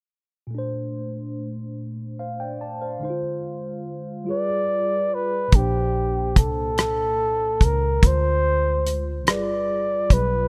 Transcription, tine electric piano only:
0.47 2.96 A#2 medium
0.47 2.98 A3 soft
0.55 3.00 D4 medium
0.55 1.78 C5 medium
2.19 2.39 C5 soft
2.19 2.39 F5 soft
2.40 2.60 D5 soft
2.40 2.60 G5 medium
2.61 2.81 D5 soft
2.61 2.81 A5 medium
2.81 3.04 C5 soft
2.81 3.21 F5 soft
2.99 4.26 D3 medium
2.99 4.27 G#3 medium
2.99 3.09 D#4 soft
3.05 4.29 C5 medium
3.10 4.25 F4 medium
4.24 5.51 G3 medium
4.24 5.52 F4 medium
4.24 5.53 G#4 medium
4.31 5.54 B4 medium
5.48 7.96 A#2 soft
5.52 7.98 A#3 soft
5.52 8.00 D4 soft
5.59 8.02 C5 medium
8.00 9.26 D3 medium
8.00 9.27 G#3 soft
8.04 9.25 F4 soft
8.04 9.29 C5 medium
9.25 10.48 G3 soft
9.25 10.48 F4 soft
9.25 10.48 G#4 soft
9.30 10.48 B4 medium

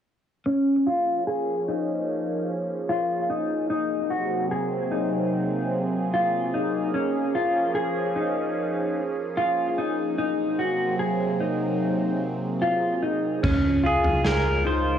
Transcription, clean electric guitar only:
0.46 0.87 C#4 medium
0.87 1.27 F4 medium
1.27 1.68 G#4 medium
1.68 2.49 D#4 medium
2.89 3.30 F4 medium
3.30 3.69 D#4 medium
3.70 4.11 D#4 medium
4.10 4.51 F#4 medium
4.51 4.92 G#4 medium
4.91 5.73 D#4 medium
6.14 6.54 F4 medium
6.54 6.94 D#4 medium
6.94 7.35 C#4 medium
7.35 7.75 F4 medium
7.75 8.16 G#4 medium
8.16 8.97 D#4 medium
9.37 9.78 F4 medium
9.78 10.17 D#4 medium
10.18 10.59 D#4 medium
10.59 10.99 F#4 medium
10.99 11.40 G#4 medium
11.40 12.22 D#4 medium
12.62 13.03 F4 medium
13.03 13.43 D#4 medium
13.43 13.84 C#4 medium
13.83 14.24 F4 medium
14.24 14.65 G#4 medium
14.65 14.99 D#4 medium

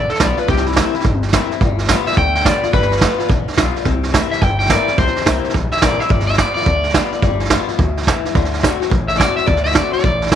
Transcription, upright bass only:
0.09 muted upright bass stroke medium
0.20 0.35 B1 medium
0.38 muted upright bass stroke medium
0.48 0.80 C2 loud
0.94 muted upright bass stroke medium
1.04 1.37 G1 medium
1.50 muted upright bass stroke medium
1.61 1.93 G1 loud
2.06 muted upright bass stroke medium
2.17 2.49 D2 medium
2.63 muted upright bass stroke medium
2.73 3.05 G1 medium
3.20 muted upright bass stroke medium
3.30 3.45 A1 medium
3.48 muted upright bass stroke medium
3.57 3.72 B1 medium
3.76 muted upright bass stroke medium
3.85 4.17 C2 medium
4.32 muted upright bass stroke medium
4.42 4.74 G1 medium
4.88 muted upright bass stroke medium
4.98 5.10 C2 loud
5.15 muted upright bass stroke medium
5.26 5.41 C2 medium
5.54 5.69 A#1 medium
5.72 muted upright bass stroke medium
5.82 5.97 A1 medium
6.00 muted upright bass stroke medium
6.10 6.42 G1 loud
6.55 muted upright bass stroke medium
6.66 6.98 D2 medium
7.12 muted upright bass stroke medium
7.22 7.55 G1 loud
7.67 muted upright bass stroke medium
7.79 8.11 D2 medium
8.24 muted upright bass stroke medium
8.35 8.67 D2 loud
8.80 muted upright bass stroke medium
8.91 9.23 A1 medium
9.37 muted upright bass stroke medium
9.47 9.79 D2 loud
9.93 muted upright bass stroke medium
10.04 10.35 A1 medium

